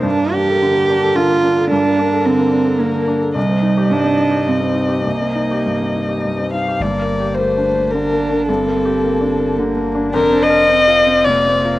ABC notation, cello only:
X:1
M:3/4
L:1/8
Q:1/4=108
K:Gm
V:1 name="Cello"
D G3 F2 | D2 C2 B, z | G,2 D2 C2 | B,4 z2 |
B,2 A,2 D2 | C4 B,2 | D2 C2 B, B, |]